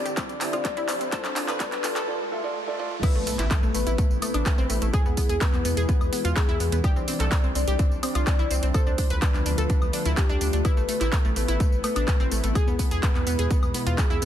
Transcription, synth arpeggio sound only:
0.05 0.13 G4 medium
0.17 0.25 C4 medium
0.41 0.48 C4 medium
0.53 0.60 F4 medium
0.65 0.72 C4 medium
0.77 0.84 E4 loud
0.89 0.96 C4 medium
1.01 1.08 C4 medium
1.13 1.20 A4 loud
1.25 1.32 D4 medium
1.36 1.44 D4 medium
1.48 1.56 B4 medium
1.60 1.67 D4 medium
1.72 1.79 D4 medium
1.84 1.91 D4 medium
1.96 2.03 A4 medium
3.03 3.10 E4 loud
3.15 3.22 A3 medium
3.27 3.34 A3 medium
3.39 3.46 E4 medium
3.51 3.58 A3 medium
3.63 3.70 A3 medium
3.75 3.82 A3 medium
3.87 3.94 E4 medium
3.98 4.06 A3 medium
4.22 4.29 A3 medium
4.34 4.41 D4 medium
4.46 4.53 A3 medium
4.58 4.65 C4 loud
4.70 4.77 A3 medium
4.82 4.89 A3 medium
4.94 5.01 G#4 loud
5.06 5.13 B3 medium
5.17 5.25 B3 medium
5.29 5.36 G#4 medium
5.41 5.48 B3 medium
5.53 5.60 B3 medium
5.65 5.72 B3 medium
5.77 5.84 G#4 medium
5.89 5.96 B3 medium
6.13 6.20 B3 medium
6.25 6.32 F4 medium
6.36 6.44 B3 medium
6.49 6.56 E4 loud
6.60 6.68 B3 medium
6.72 6.79 B3 medium
6.84 6.91 G4 loud
6.96 7.03 C4 medium
7.08 7.15 C4 medium
7.20 7.27 A4 medium
7.32 7.39 C4 medium
7.44 7.51 C4 medium
7.55 7.63 C4 medium
7.68 7.75 G4 medium
7.79 7.87 C4 medium
8.03 8.10 C4 medium
8.15 8.22 F4 medium
8.27 8.34 C4 medium
8.39 8.46 E4 medium
8.51 8.58 C4 medium
8.63 8.70 C4 medium
8.74 8.82 A4 loud
8.87 8.94 D4 medium
8.98 9.06 D4 medium
9.10 9.17 B4 medium
9.22 9.29 D4 medium
9.34 9.41 D4 medium
9.46 9.53 D4 medium
9.58 9.65 A4 medium
9.70 9.77 D4 medium
9.94 10.01 D4 medium
10.06 10.13 E4 medium
10.17 10.25 D4 medium
10.29 10.36 D4 loud
10.41 10.48 D4 medium
10.53 10.60 D4 medium
10.65 10.72 E4 loud
10.77 10.84 A3 medium
10.89 10.96 A3 medium
11.01 11.08 E4 loud
11.12 11.20 A3 medium
11.25 11.32 A3 medium
11.36 11.44 A3 medium
11.48 11.55 E4 medium
11.60 11.67 A3 medium
11.84 11.91 A3 medium
11.96 12.03 D4 medium
12.08 12.15 A3 medium
12.20 12.27 C4 medium
12.32 12.39 A3 medium
12.44 12.51 A3 medium
12.55 12.63 G#4 loud
12.68 12.75 B3 medium
12.79 12.87 B3 medium
12.91 12.98 G#4 medium
13.03 13.10 B3 medium
13.15 13.22 B3 medium
13.27 13.34 B3 medium
13.39 13.46 G#4 medium
13.51 13.58 B3 medium
13.74 13.82 B3 medium
13.86 13.94 F4 medium
13.98 14.06 B3 medium
14.10 14.17 E4 medium
14.22 14.25 B3 medium

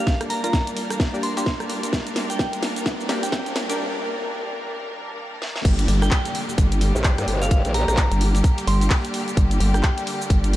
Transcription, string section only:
0.00 5.61 G3 medium
0.00 5.61 A#3 medium
0.00 5.61 D4 medium
0.00 5.61 A#4 medium
5.65 10.56 D3 medium
5.65 10.56 G3 medium
5.65 10.56 A#3 medium
5.65 10.56 G4 medium

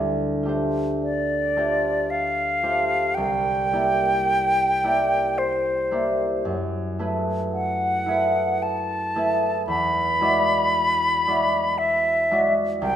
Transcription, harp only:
0.00 3.22 D2 soft
0.00 3.17 G3 soft
0.00 3.16 E4 soft
0.00 0.45 G4 soft
0.00 0.45 C5 soft
0.43 1.55 A3 soft
0.43 1.56 F4 soft
0.43 1.56 G4 soft
0.49 1.56 C5 soft
1.56 2.61 A3 soft
1.56 2.62 F4 soft
1.56 2.62 G4 soft
1.56 2.63 C5 soft
2.63 3.22 A3 soft
2.63 3.22 F4 soft
2.63 3.72 G4 soft
2.63 6.50 C5 soft
3.17 6.50 C2 soft
3.73 4.83 A#3 soft
3.73 4.83 E4 soft
3.73 4.83 G4 soft
3.73 4.84 D5 soft
4.84 5.90 A#3 soft
4.84 5.91 E4 soft
4.84 5.91 G4 soft
4.84 5.92 D5 soft
5.91 6.50 A#3 soft
5.91 6.98 E4 soft
5.91 6.50 G4 soft
5.91 6.51 D5 soft
6.45 9.72 F#2 soft
6.99 8.06 A3 soft
6.99 8.06 E4 soft
6.99 8.07 G#4 soft
6.99 8.07 B4 soft
8.06 9.14 A3 soft
8.06 9.15 E4 soft
8.06 9.15 G#4 soft
8.11 9.16 B4 soft
9.15 9.72 A3 soft
9.15 10.20 E4 soft
9.15 12.88 G#4 soft
9.15 12.88 B4 soft
9.68 12.88 E2 soft
10.21 11.26 G#3 soft
10.21 11.26 E4 soft
10.21 11.27 F#4 soft
10.21 11.27 D5 soft
11.27 12.30 G#3 soft
11.27 12.30 E4 soft
11.27 12.31 F#4 soft
11.27 12.31 D5 soft
12.31 12.87 G#3 soft
12.31 12.96 E4 soft
12.31 12.88 F#4 soft
12.31 12.96 D5 soft
12.82 12.96 C2 soft

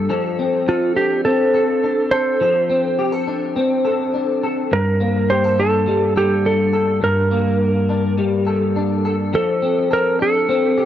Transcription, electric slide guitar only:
0.69 0.95 F4 medium
0.96 1.24 G4 medium
1.25 2.14 A4 medium
2.11 2.94 C5 medium
4.73 5.32 A#4 medium
5.30 5.59 C5 medium
5.60 6.17 A4 medium
6.17 6.46 G4 medium
6.46 7.03 A4 medium
7.04 8.15 A#4 medium
9.35 9.88 A4 medium
9.93 10.22 A#4 medium
10.22 10.85 A4 medium

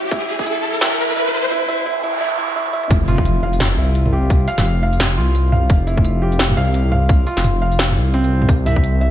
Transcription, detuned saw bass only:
2.91 3.77 F1 loud
3.77 4.04 C2 loud
4.05 4.47 C2 loud
4.58 5.19 F1 loud
5.17 5.51 C2 loud
5.52 5.68 C2 medium
5.70 6.56 F1 loud
6.57 6.83 C2 loud
6.85 7.26 C2 medium
7.37 7.98 F1 loud
7.96 8.30 C2 loud
8.31 8.48 C2 medium
8.49 9.11 C2 loud

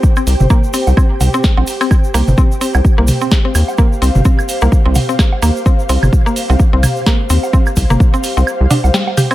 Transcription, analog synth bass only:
0.27 0.35 C2 loud
0.40 0.46 G1 medium
0.87 0.93 C2 medium
1.21 1.29 C2 medium
1.58 1.63 A#1 medium
2.14 2.22 C2 loud
2.28 2.34 G1 medium
2.75 2.81 C2 medium
2.98 3.11 C2 loud
3.55 3.63 D#2 medium
4.02 4.10 C2 loud
4.15 4.21 G1 medium
4.62 4.68 C2 medium
4.86 4.98 C2 loud
5.42 5.50 D#2 medium
5.89 5.97 C2 loud
6.03 6.09 G1 medium
6.50 6.56 C2 medium
6.73 6.86 C2 loud
7.30 7.38 D#2 medium
7.77 7.85 C2 loud
7.90 7.96 G1 medium
8.37 8.43 C2 medium
8.61 8.67 C2 loud
8.84 8.90 C2 medium

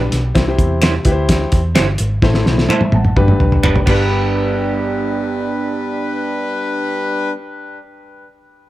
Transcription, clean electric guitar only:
0.82 0.92 C4 medium
0.82 0.93 E4 medium
0.82 0.93 G4 medium
0.82 0.93 C5 medium
1.75 1.86 C4 medium
1.75 1.86 E4 medium
1.75 1.87 G4 medium
1.75 1.87 C5 loud
2.69 2.80 C4 medium
2.69 2.80 E4 medium
2.69 2.80 A4 medium
2.69 2.81 C5 medium
3.63 3.74 B3 medium
3.63 3.74 D4 medium
3.63 3.75 G4 medium
3.63 3.75 B4 medium
3.86 7.36 B3 medium
3.86 7.38 D4 medium
3.86 7.39 G4 medium
3.91 7.41 B4 medium

